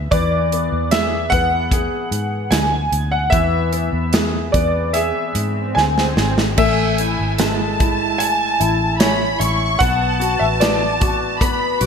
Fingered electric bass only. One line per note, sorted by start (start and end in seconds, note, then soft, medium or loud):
0.12 0.68 E2 medium
0.72 1.28 E2 medium
1.32 1.88 E2 medium
2.11 2.49 G#2 medium
2.51 2.89 D2 medium
2.92 3.30 D2 medium
3.33 3.89 E2 loud
3.93 4.50 E2 medium
4.54 5.11 E2 medium
5.35 5.73 G#2 medium
5.76 6.15 D2 medium
6.16 6.55 G#1 medium
6.58 7.15 A1 loud
7.19 8.57 G#1 medium
8.61 9.37 A1 medium
9.40 9.78 A1 medium
9.81 10.37 B1 medium
10.41 11.77 A1 medium
11.81 11.86 B1 medium